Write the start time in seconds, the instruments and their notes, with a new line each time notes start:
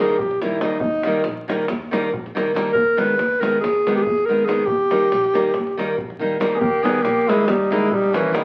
0.00 nylon-string guitar D#3 G3 A#3 D#4, alto saxophone G#4
0.10 davul high
0.19 double bass A#1, alto saxophone G4, davul low
0.31 davul high
0.41 nylon-string guitar D#3 G3 A#3 D#4, alto saxophone E4, davul high
0.61 nylon-string guitar D#3 G3 A#3 D#4, alto saxophone D#4, davul high
0.79 double bass D#2, alto saxophone D#4, davul low
1.03 nylon-string guitar D#3 G3 A#3 D#4, davul high
1.24 double bass A#1, davul high
1.48 nylon-string guitar D#3 G3 A#3 D#4, davul high
1.68 double bass D#2, davul high
1.91 nylon-string guitar D#3 G3 A#3 D#4, davul high
2.04 davul high
2.13 double bass A#1, davul low
2.26 davul high
2.35 nylon-string guitar D#3 G3 A#3 D#4, davul high
2.54 nylon-string guitar D#3 G3 A#3 D#4, davul high
2.73 double bass D#2, alto saxophone A#4, davul low
2.97 nylon-string guitar D#3 G#3 B3 D#4, alto saxophone B4, davul high
3.18 double bass D#2, davul high
3.40 nylon-string guitar D#3 G#3 B3 D#4, alto saxophone A#4, davul high
3.60 double bass D#2, alto saxophone G#4
3.64 davul high
3.87 nylon-string guitar D#3 G#3 B3 D#4, davul high
3.95 alto saxophone G4, davul high
4.03 alto saxophone G#4, davul low
4.07 double bass D#2
4.18 davul high
4.26 nylon-string guitar D#3 G#3, alto saxophone A#4
4.30 nylon-string guitar B3 D#4
4.45 nylon-string guitar D#3 G#3 B3 D#4, alto saxophone G#4, davul high
4.66 double bass D#2, alto saxophone G4, davul low
4.90 nylon-string guitar D#3 G3 A#3 D#4, davul high
5.12 double bass A#1, davul high
5.24 davul high
5.33 nylon-string guitar D#3 G3 A#3 D#4, davul high
5.45 davul high
5.54 double bass D#2, davul high, davul low
5.67 davul high
5.77 nylon-string guitar D#3 G3 A#3 D#4, davul high
5.98 double bass A#1, davul low
6.10 davul high
6.19 nylon-string guitar D#3 G3 A#3 D#4
6.32 davul high
6.40 nylon-string guitar D#3 G3 A#3 D#4, davul high
6.51 trumpet G#4, davul high
6.56 alto saxophone A#3 B3, trumpet G4
6.61 double bass D#2, davul low
6.83 nylon-string guitar D#3 G3 A#3 D#4, alto saxophone B3, trumpet G#4, davul high
7.02 double bass A#1, alto saxophone A#3, trumpet G4, davul high
7.28 nylon-string guitar D#3 G3 A#3 D#4, alto saxophone G#3, trumpet E4, davul high
7.46 double bass D#2, alto saxophone G3, trumpet D#4, davul high
7.71 nylon-string guitar D#3 G3 A#3 D#4, alto saxophone G#3, trumpet E4, davul high
7.91 double bass A#1, alto saxophone G3, trumpet D#4, davul low
8.04 davul high
8.13 nylon-string guitar D#3 G3 A#3 D#4, alto saxophone E3, trumpet C#4, davul high
8.32 nylon-string guitar D#3 G3 A#3 D#4, alto saxophone D#3, trumpet B3, davul high